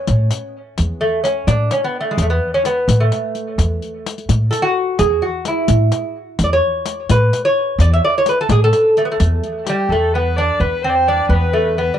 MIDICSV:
0, 0, Header, 1, 5, 480
1, 0, Start_track
1, 0, Tempo, 467654
1, 78, Time_signature, 6, 3, 24, 8
1, 12304, End_track
2, 0, Start_track
2, 0, Title_t, "Kamancheh"
2, 0, Program_c, 0, 110
2, 9911, Note_on_c, 0, 67, 83
2, 10163, Note_on_c, 0, 69, 77
2, 10178, Note_off_c, 0, 67, 0
2, 10404, Note_on_c, 0, 71, 73
2, 10419, Note_off_c, 0, 69, 0
2, 10632, Note_on_c, 0, 74, 78
2, 10647, Note_off_c, 0, 71, 0
2, 10879, Note_on_c, 0, 71, 77
2, 10895, Note_off_c, 0, 74, 0
2, 11112, Note_on_c, 0, 72, 76
2, 11128, Note_off_c, 0, 71, 0
2, 11184, Note_on_c, 0, 74, 62
2, 11199, Note_off_c, 0, 72, 0
2, 11240, Note_on_c, 0, 72, 73
2, 11255, Note_off_c, 0, 74, 0
2, 11368, Note_on_c, 0, 74, 80
2, 11383, Note_off_c, 0, 72, 0
2, 11585, Note_off_c, 0, 74, 0
2, 11591, Note_on_c, 0, 71, 75
2, 12039, Note_off_c, 0, 71, 0
2, 12076, Note_on_c, 0, 71, 77
2, 12304, Note_off_c, 0, 71, 0
2, 12304, End_track
3, 0, Start_track
3, 0, Title_t, "Lute"
3, 0, Program_c, 1, 24
3, 0, Note_on_c, 1, 61, 85
3, 582, Note_off_c, 1, 61, 0
3, 1034, Note_on_c, 1, 57, 82
3, 1265, Note_off_c, 1, 57, 0
3, 1269, Note_on_c, 1, 61, 89
3, 1514, Note_on_c, 1, 62, 94
3, 1523, Note_off_c, 1, 61, 0
3, 1766, Note_off_c, 1, 62, 0
3, 1766, Note_on_c, 1, 61, 85
3, 1888, Note_off_c, 1, 61, 0
3, 1892, Note_on_c, 1, 59, 85
3, 2054, Note_off_c, 1, 59, 0
3, 2058, Note_on_c, 1, 57, 78
3, 2166, Note_on_c, 1, 56, 75
3, 2167, Note_off_c, 1, 57, 0
3, 2280, Note_on_c, 1, 57, 71
3, 2285, Note_off_c, 1, 56, 0
3, 2355, Note_off_c, 1, 57, 0
3, 2360, Note_on_c, 1, 59, 85
3, 2605, Note_off_c, 1, 59, 0
3, 2610, Note_on_c, 1, 61, 91
3, 2725, Note_off_c, 1, 61, 0
3, 2729, Note_on_c, 1, 59, 84
3, 3083, Note_on_c, 1, 57, 75
3, 3097, Note_off_c, 1, 59, 0
3, 4242, Note_off_c, 1, 57, 0
3, 4625, Note_on_c, 1, 69, 91
3, 4744, Note_on_c, 1, 66, 92
3, 4759, Note_off_c, 1, 69, 0
3, 5121, Note_on_c, 1, 68, 84
3, 5125, Note_off_c, 1, 66, 0
3, 5359, Note_on_c, 1, 66, 76
3, 5370, Note_off_c, 1, 68, 0
3, 5608, Note_off_c, 1, 66, 0
3, 5622, Note_on_c, 1, 64, 75
3, 6323, Note_off_c, 1, 64, 0
3, 6607, Note_on_c, 1, 74, 64
3, 6681, Note_off_c, 1, 74, 0
3, 6702, Note_on_c, 1, 73, 91
3, 7293, Note_off_c, 1, 73, 0
3, 7297, Note_on_c, 1, 71, 96
3, 7642, Note_off_c, 1, 71, 0
3, 7646, Note_on_c, 1, 73, 101
3, 8014, Note_off_c, 1, 73, 0
3, 8018, Note_on_c, 1, 74, 94
3, 8133, Note_off_c, 1, 74, 0
3, 8144, Note_on_c, 1, 76, 102
3, 8254, Note_off_c, 1, 76, 0
3, 8258, Note_on_c, 1, 74, 90
3, 8389, Note_off_c, 1, 74, 0
3, 8394, Note_on_c, 1, 73, 93
3, 8502, Note_off_c, 1, 73, 0
3, 8507, Note_on_c, 1, 71, 89
3, 8601, Note_off_c, 1, 71, 0
3, 8629, Note_on_c, 1, 69, 88
3, 8737, Note_off_c, 1, 69, 0
3, 8742, Note_on_c, 1, 68, 95
3, 8854, Note_off_c, 1, 68, 0
3, 8868, Note_on_c, 1, 69, 97
3, 9214, Note_on_c, 1, 57, 79
3, 9224, Note_off_c, 1, 69, 0
3, 9274, Note_off_c, 1, 57, 0
3, 9290, Note_on_c, 1, 59, 68
3, 9352, Note_off_c, 1, 59, 0
3, 9357, Note_on_c, 1, 57, 80
3, 9904, Note_off_c, 1, 57, 0
3, 9950, Note_on_c, 1, 55, 92
3, 10180, Note_off_c, 1, 55, 0
3, 10184, Note_on_c, 1, 57, 80
3, 10415, Note_off_c, 1, 57, 0
3, 10419, Note_on_c, 1, 59, 82
3, 10654, Note_on_c, 1, 62, 90
3, 10655, Note_off_c, 1, 59, 0
3, 10884, Note_on_c, 1, 59, 83
3, 10892, Note_off_c, 1, 62, 0
3, 11126, Note_off_c, 1, 59, 0
3, 11130, Note_on_c, 1, 60, 84
3, 11370, Note_off_c, 1, 60, 0
3, 11376, Note_on_c, 1, 62, 90
3, 11595, Note_on_c, 1, 59, 87
3, 11613, Note_off_c, 1, 62, 0
3, 11834, Note_off_c, 1, 59, 0
3, 11838, Note_on_c, 1, 57, 78
3, 12084, Note_off_c, 1, 57, 0
3, 12092, Note_on_c, 1, 59, 82
3, 12254, Note_on_c, 1, 55, 64
3, 12257, Note_off_c, 1, 59, 0
3, 12304, Note_off_c, 1, 55, 0
3, 12304, End_track
4, 0, Start_track
4, 0, Title_t, "Upright bass"
4, 0, Program_c, 2, 32
4, 87, Note_on_c, 2, 45, 88
4, 287, Note_off_c, 2, 45, 0
4, 807, Note_on_c, 2, 40, 90
4, 1008, Note_off_c, 2, 40, 0
4, 1510, Note_on_c, 2, 45, 89
4, 1719, Note_off_c, 2, 45, 0
4, 2233, Note_on_c, 2, 40, 95
4, 2441, Note_off_c, 2, 40, 0
4, 2953, Note_on_c, 2, 45, 91
4, 3161, Note_off_c, 2, 45, 0
4, 3675, Note_on_c, 2, 40, 95
4, 3882, Note_off_c, 2, 40, 0
4, 4400, Note_on_c, 2, 45, 86
4, 4605, Note_off_c, 2, 45, 0
4, 5123, Note_on_c, 2, 40, 95
4, 5327, Note_off_c, 2, 40, 0
4, 5844, Note_on_c, 2, 45, 95
4, 6047, Note_off_c, 2, 45, 0
4, 6557, Note_on_c, 2, 40, 94
4, 6763, Note_off_c, 2, 40, 0
4, 7283, Note_on_c, 2, 45, 93
4, 7486, Note_off_c, 2, 45, 0
4, 7991, Note_on_c, 2, 40, 104
4, 8198, Note_off_c, 2, 40, 0
4, 8713, Note_on_c, 2, 45, 99
4, 8919, Note_off_c, 2, 45, 0
4, 9444, Note_on_c, 2, 40, 104
4, 9645, Note_off_c, 2, 40, 0
4, 10151, Note_on_c, 2, 40, 81
4, 10763, Note_off_c, 2, 40, 0
4, 10878, Note_on_c, 2, 40, 78
4, 11487, Note_off_c, 2, 40, 0
4, 11590, Note_on_c, 2, 40, 89
4, 12202, Note_off_c, 2, 40, 0
4, 12304, End_track
5, 0, Start_track
5, 0, Title_t, "Riq"
5, 76, Note_on_c, 9, 54, 51
5, 178, Note_off_c, 9, 54, 0
5, 314, Note_on_c, 9, 54, 43
5, 417, Note_off_c, 9, 54, 0
5, 797, Note_on_c, 9, 54, 48
5, 900, Note_off_c, 9, 54, 0
5, 1282, Note_on_c, 9, 54, 47
5, 1385, Note_off_c, 9, 54, 0
5, 1518, Note_on_c, 9, 54, 61
5, 1620, Note_off_c, 9, 54, 0
5, 1754, Note_on_c, 9, 54, 49
5, 1857, Note_off_c, 9, 54, 0
5, 2239, Note_on_c, 9, 54, 49
5, 2342, Note_off_c, 9, 54, 0
5, 2721, Note_on_c, 9, 54, 45
5, 2823, Note_off_c, 9, 54, 0
5, 2962, Note_on_c, 9, 54, 65
5, 3065, Note_off_c, 9, 54, 0
5, 3201, Note_on_c, 9, 54, 45
5, 3304, Note_off_c, 9, 54, 0
5, 3438, Note_on_c, 9, 54, 20
5, 3540, Note_off_c, 9, 54, 0
5, 3682, Note_on_c, 9, 54, 47
5, 3784, Note_off_c, 9, 54, 0
5, 3924, Note_on_c, 9, 54, 19
5, 4027, Note_off_c, 9, 54, 0
5, 4172, Note_on_c, 9, 54, 50
5, 4275, Note_off_c, 9, 54, 0
5, 4291, Note_on_c, 9, 54, 20
5, 4394, Note_off_c, 9, 54, 0
5, 4405, Note_on_c, 9, 54, 58
5, 4507, Note_off_c, 9, 54, 0
5, 4645, Note_on_c, 9, 54, 46
5, 4747, Note_off_c, 9, 54, 0
5, 5120, Note_on_c, 9, 54, 53
5, 5223, Note_off_c, 9, 54, 0
5, 5596, Note_on_c, 9, 54, 53
5, 5698, Note_off_c, 9, 54, 0
5, 5831, Note_on_c, 9, 54, 66
5, 5934, Note_off_c, 9, 54, 0
5, 6074, Note_on_c, 9, 54, 52
5, 6176, Note_off_c, 9, 54, 0
5, 6557, Note_on_c, 9, 54, 52
5, 6659, Note_off_c, 9, 54, 0
5, 7037, Note_on_c, 9, 54, 51
5, 7140, Note_off_c, 9, 54, 0
5, 7282, Note_on_c, 9, 54, 66
5, 7384, Note_off_c, 9, 54, 0
5, 7526, Note_on_c, 9, 54, 47
5, 7628, Note_off_c, 9, 54, 0
5, 8005, Note_on_c, 9, 54, 50
5, 8107, Note_off_c, 9, 54, 0
5, 8478, Note_on_c, 9, 54, 46
5, 8580, Note_off_c, 9, 54, 0
5, 8719, Note_on_c, 9, 54, 69
5, 8821, Note_off_c, 9, 54, 0
5, 8960, Note_on_c, 9, 54, 44
5, 9062, Note_off_c, 9, 54, 0
5, 9206, Note_on_c, 9, 54, 22
5, 9309, Note_off_c, 9, 54, 0
5, 9442, Note_on_c, 9, 54, 48
5, 9544, Note_off_c, 9, 54, 0
5, 9683, Note_on_c, 9, 54, 21
5, 9786, Note_off_c, 9, 54, 0
5, 9921, Note_on_c, 9, 54, 50
5, 10023, Note_off_c, 9, 54, 0
5, 12304, End_track
0, 0, End_of_file